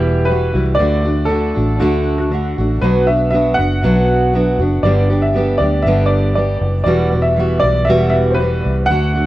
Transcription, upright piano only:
0, 0, Header, 1, 2, 480
1, 0, Start_track
1, 0, Key_signature, 1, "minor"
1, 0, Tempo, 506757
1, 753, Time_signature, 4, 2, 24, 8
1, 8775, End_track
2, 0, Start_track
2, 0, Title_t, "Upright piano"
2, 0, Program_c, 0, 0
2, 0, Note_on_c, 0, 67, 96
2, 238, Note_on_c, 0, 71, 97
2, 274, Note_off_c, 0, 67, 0
2, 589, Note_off_c, 0, 71, 0
2, 708, Note_on_c, 0, 74, 96
2, 1175, Note_off_c, 0, 74, 0
2, 1188, Note_on_c, 0, 69, 94
2, 1702, Note_on_c, 0, 66, 80
2, 1706, Note_off_c, 0, 69, 0
2, 2049, Note_off_c, 0, 66, 0
2, 2063, Note_on_c, 0, 66, 82
2, 2403, Note_off_c, 0, 66, 0
2, 2664, Note_on_c, 0, 71, 94
2, 2905, Note_on_c, 0, 76, 92
2, 2916, Note_off_c, 0, 71, 0
2, 3117, Note_off_c, 0, 76, 0
2, 3132, Note_on_c, 0, 76, 91
2, 3357, Note_on_c, 0, 78, 103
2, 3390, Note_off_c, 0, 76, 0
2, 4297, Note_off_c, 0, 78, 0
2, 4576, Note_on_c, 0, 74, 89
2, 4945, Note_on_c, 0, 76, 84
2, 4955, Note_off_c, 0, 74, 0
2, 5285, Note_on_c, 0, 74, 87
2, 5319, Note_off_c, 0, 76, 0
2, 5517, Note_on_c, 0, 76, 90
2, 5546, Note_off_c, 0, 74, 0
2, 5740, Note_on_c, 0, 74, 85
2, 5757, Note_off_c, 0, 76, 0
2, 6004, Note_off_c, 0, 74, 0
2, 6019, Note_on_c, 0, 74, 78
2, 6359, Note_off_c, 0, 74, 0
2, 6477, Note_on_c, 0, 74, 86
2, 6838, Note_on_c, 0, 76, 89
2, 6865, Note_off_c, 0, 74, 0
2, 7194, Note_on_c, 0, 74, 103
2, 7226, Note_off_c, 0, 76, 0
2, 7432, Note_on_c, 0, 76, 98
2, 7461, Note_off_c, 0, 74, 0
2, 7654, Note_off_c, 0, 76, 0
2, 7668, Note_on_c, 0, 76, 95
2, 7716, Note_off_c, 0, 76, 0
2, 7870, Note_on_c, 0, 72, 69
2, 7902, Note_on_c, 0, 71, 95
2, 7943, Note_off_c, 0, 72, 0
2, 8260, Note_off_c, 0, 71, 0
2, 8392, Note_on_c, 0, 78, 103
2, 8775, Note_off_c, 0, 78, 0
2, 8775, End_track
0, 0, End_of_file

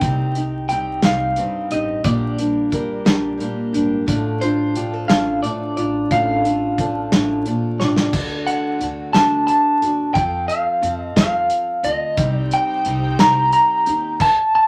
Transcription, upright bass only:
0, 0, Header, 1, 2, 480
1, 0, Start_track
1, 0, Tempo, 675676
1, 10, Time_signature, 6, 3, 24, 8
1, 10425, End_track
2, 0, Start_track
2, 0, Title_t, "Upright bass"
2, 0, Program_c, 0, 32
2, 13, Note_on_c, 0, 36, 83
2, 705, Note_off_c, 0, 36, 0
2, 732, Note_on_c, 0, 36, 82
2, 949, Note_off_c, 0, 36, 0
2, 1211, Note_on_c, 0, 33, 75
2, 1429, Note_off_c, 0, 33, 0
2, 1451, Note_on_c, 0, 34, 85
2, 2145, Note_off_c, 0, 34, 0
2, 2179, Note_on_c, 0, 34, 78
2, 2394, Note_off_c, 0, 34, 0
2, 2653, Note_on_c, 0, 32, 72
2, 2871, Note_off_c, 0, 32, 0
2, 2897, Note_on_c, 0, 33, 84
2, 3589, Note_off_c, 0, 33, 0
2, 3619, Note_on_c, 0, 33, 78
2, 3834, Note_off_c, 0, 33, 0
2, 4096, Note_on_c, 0, 33, 74
2, 4313, Note_off_c, 0, 33, 0
2, 4340, Note_on_c, 0, 33, 84
2, 5030, Note_off_c, 0, 33, 0
2, 5061, Note_on_c, 0, 33, 82
2, 5276, Note_off_c, 0, 33, 0
2, 5537, Note_on_c, 0, 33, 72
2, 5754, Note_off_c, 0, 33, 0
2, 5777, Note_on_c, 0, 38, 82
2, 5994, Note_off_c, 0, 38, 0
2, 6257, Note_on_c, 0, 38, 81
2, 6474, Note_off_c, 0, 38, 0
2, 6503, Note_on_c, 0, 38, 86
2, 6717, Note_off_c, 0, 38, 0
2, 6976, Note_on_c, 0, 39, 78
2, 7193, Note_off_c, 0, 39, 0
2, 7212, Note_on_c, 0, 41, 81
2, 7431, Note_off_c, 0, 41, 0
2, 7689, Note_on_c, 0, 41, 88
2, 7909, Note_off_c, 0, 41, 0
2, 7929, Note_on_c, 0, 41, 80
2, 8149, Note_off_c, 0, 41, 0
2, 8406, Note_on_c, 0, 38, 79
2, 8626, Note_off_c, 0, 38, 0
2, 8649, Note_on_c, 0, 36, 91
2, 8868, Note_off_c, 0, 36, 0
2, 9134, Note_on_c, 0, 36, 86
2, 9350, Note_off_c, 0, 36, 0
2, 9375, Note_on_c, 0, 36, 85
2, 9590, Note_off_c, 0, 36, 0
2, 9854, Note_on_c, 0, 39, 87
2, 10069, Note_off_c, 0, 39, 0
2, 10425, End_track
0, 0, End_of_file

